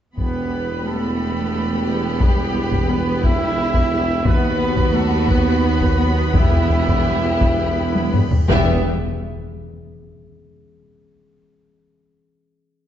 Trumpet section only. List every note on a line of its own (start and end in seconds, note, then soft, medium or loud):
0.18 0.83 B4 medium
0.86 2.22 A4 medium
2.22 2.90 G4 medium
2.89 3.24 B4 medium
3.24 4.24 E5 loud
4.26 4.94 B4 loud
4.94 5.29 A4 medium
5.29 5.98 B4 medium
6.00 6.35 B4 medium
6.36 8.14 E5 medium
8.50 8.82 E5 loud